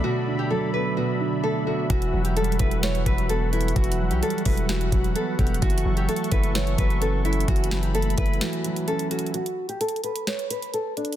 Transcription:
Already playing: grand piano B2 D3 F#3 A3 B3, analog synth pad A4 D5 E5 B5
0.04 grand piano B2, nylon-string guitar F#4
0.27 grand piano D3
0.39 nylon-string guitar G4
0.50 grand piano F#3, nylon-string guitar A4
0.74 grand piano B3, nylon-string guitar B4
0.97 grand piano B2, nylon-string guitar F#4
1.21 grand piano D3
1.43 grand piano A3, nylon-string guitar A4
1.67 grand piano A3, nylon-string guitar F#4
1.90 808-style bass E1, grand piano E3, analog synth pad F#4 F#5, nylon-string guitar F#4, kick, closed hi-hat
2.02 closed hi-hat
2.13 808-style bass E1, grand piano F#3
2.25 nylon-string guitar G4, closed hi-hat
2.37 grand piano G3, nylon-string guitar A4, closed hi-hat
2.44 closed hi-hat
2.52 closed hi-hat
2.59 808-style bass E1, grand piano E4, nylon-string guitar B4, kick, closed hi-hat
2.71 closed hi-hat
2.83 grand piano E3, nylon-string guitar C#5, snare, closed hi-hat
2.95 closed hi-hat
3.06 808-style bass E1, grand piano F#3, nylon-string guitar B4, kick, closed hi-hat
3.18 closed hi-hat
3.29 grand piano B3, nylon-string guitar A4, closed hi-hat
3.53 grand piano B3, nylon-string guitar E4, closed hi-hat
3.61 closed hi-hat
3.68 closed hi-hat
3.76 808-style bass E1, grand piano E3, nylon-string guitar F#4, kick, closed hi-hat
3.84 closed hi-hat
3.92 closed hi-hat
3.99 grand piano F#3
4.11 808-style bass B1, nylon-string guitar G4, closed hi-hat
4.22 grand piano G3, nylon-string guitar A4, closed hi-hat
4.30 closed hi-hat
4.38 closed hi-hat
4.45 808-style bass E1, grand piano E4, nylon-string guitar B4, kick, open hi-hat
4.57 closed hi-hat
4.69 grand piano E3, nylon-string guitar F#4, snare, closed hi-hat
4.81 closed hi-hat
4.92 808-style bass E1, grand piano F#3, kick, closed hi-hat
5.04 closed hi-hat
5.15 grand piano B3, nylon-string guitar A4, closed hi-hat
5.39 808-style bass E1, grand piano B3, nylon-string guitar G4, kick, closed hi-hat
5.47 closed hi-hat
5.54 closed hi-hat
5.62 808-style bass F#1, grand piano E3, nylon-string guitar F#4, analog synth pad A4 C#6, kick, closed hi-hat
5.70 closed hi-hat
5.78 closed hi-hat
5.85 808-style bass F#1, grand piano F#3
5.97 nylon-string guitar G4, closed hi-hat
6.09 grand piano A3, nylon-string guitar A4, closed hi-hat
6.16 closed hi-hat
6.24 closed hi-hat
6.32 808-style bass F#1, grand piano E4, nylon-string guitar B4, kick, closed hi-hat
6.43 closed hi-hat
6.55 grand piano E3, nylon-string guitar C#5, snare, closed hi-hat
6.67 closed hi-hat
6.78 808-style bass F#1, grand piano F#3, nylon-string guitar B4, kick, closed hi-hat
6.90 closed hi-hat
7.01 grand piano C#4, nylon-string guitar A4, closed hi-hat
7.25 grand piano C#4, nylon-string guitar E4, closed hi-hat
7.33 closed hi-hat
7.40 closed hi-hat
7.48 808-style bass F#1, grand piano E3, nylon-string guitar F#4, analog synth pad B5, kick, closed hi-hat
7.56 closed hi-hat
7.64 closed hi-hat
7.71 grand piano F#3, snare
7.83 nylon-string guitar G4, closed hi-hat
7.95 grand piano A3, nylon-string guitar A4, closed hi-hat
8.02 closed hi-hat
8.10 closed hi-hat
8.18 808-style bass F#1, grand piano E4, nylon-string guitar B4, kick, closed hi-hat, open hi-hat
8.26 closed hi-hat
8.33 closed hi-hat
8.41 grand piano E3, nylon-string guitar F#4, snare, closed hi-hat
8.53 closed hi-hat
8.64 grand piano F#3, closed hi-hat
8.76 closed hi-hat
8.88 grand piano C#4, nylon-string guitar A4, closed hi-hat
8.99 closed hi-hat
9.11 grand piano C#4, nylon-string guitar F#4, closed hi-hat
9.19 closed hi-hat
9.26 closed hi-hat
9.34 nylon-string guitar F#4, closed hi-hat
9.46 closed hi-hat
9.69 nylon-string guitar G4, closed hi-hat
9.81 nylon-string guitar A4, closed hi-hat
9.88 closed hi-hat
9.96 closed hi-hat
10.04 nylon-string guitar B4, closed hi-hat
10.16 closed hi-hat
10.27 nylon-string guitar C#5, snare, closed hi-hat
10.39 closed hi-hat
10.51 nylon-string guitar B4, closed hi-hat
10.62 closed hi-hat
10.74 nylon-string guitar A4, closed hi-hat
10.97 nylon-string guitar D4, closed hi-hat
11.05 closed hi-hat
11.13 closed hi-hat

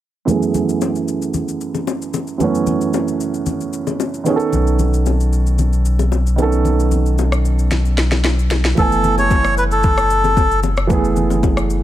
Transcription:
0.25 grand piano F#2 E3 A3, low conga, shaker
0.30 grand piano B3 G#4
0.43 shaker
0.54 low conga, shaker
0.69 shaker
0.81 high bongo, shaker
0.96 shaker
1.08 shaker
1.22 shaker
1.34 low conga, shaker
1.48 shaker
1.61 shaker
1.75 low bongo, shaker
1.87 high bongo, shaker
2.02 shaker
2.14 low bongo, shaker
2.27 shaker
2.38 grand piano F#2 E3 A3, low conga, shaker
2.42 grand piano B3 C#4
2.55 shaker
2.67 low conga, shaker
2.81 shaker
2.93 high bongo, shaker
3.08 shaker
3.20 shaker
3.34 shaker
3.46 low conga, shaker
3.61 shaker
3.73 shaker
3.87 low bongo, shaker
4.00 high bongo, shaker
4.14 shaker
4.24 grand piano D#3 B3 C#4, low bongo, shaker
4.30 grand piano G#4
4.36 grand piano A4, shaker
4.53 sub bass B1, low conga, shaker
4.67 shaker
4.79 low conga, shaker
4.94 shaker
5.06 high bongo, shaker
5.20 shaker
5.33 shaker
5.47 shaker
5.58 low conga, shaker
5.73 shaker
5.85 shaker
5.99 low bongo, shaker
6.12 high bongo, shaker
6.27 shaker
6.36 grand piano D#3 B3 C#4, low bongo, shaker
6.42 grand piano A4
6.52 shaker
6.65 low conga, shaker
6.80 shaker
6.91 low conga, shaker
7.06 shaker
7.18 high bongo, shaker
7.32 cross-stick, shaker
7.45 shaker
7.59 shaker
7.71 snare, low conga, shaker
7.85 shaker
7.98 snare, shaker
8.12 snare, low bongo, shaker
8.24 snare, high bongo, shaker
8.39 shaker
8.51 snare, low bongo, shaker
8.64 snare, shaker
8.75 sub bass F#1, grand piano E3 A3 B3, melodica A4, kick, low conga, shaker
8.81 grand piano G#5
8.92 shaker
9.04 low conga, shaker
9.18 melodica C#5, low bongo, shaker
9.31 kick, high bongo, shaker
9.45 cross-stick, shaker
9.58 melodica B4, shaker
9.71 melodica A4, shaker
9.83 kick, low conga, shaker
9.98 cross-stick, shaker
10.10 shaker
10.24 low bongo, shaker
10.37 kick, high bongo, shaker
10.51 shaker
10.63 low bongo, shaker
10.77 cross-stick, shaker
10.87 grand piano E3 A3 B3, kick, low conga, shaker
10.93 grand piano G#4
11.04 shaker
11.16 low conga, shaker
11.30 low bongo, shaker
11.43 kick, high bongo, shaker
11.57 cross-stick, shaker
11.70 shaker

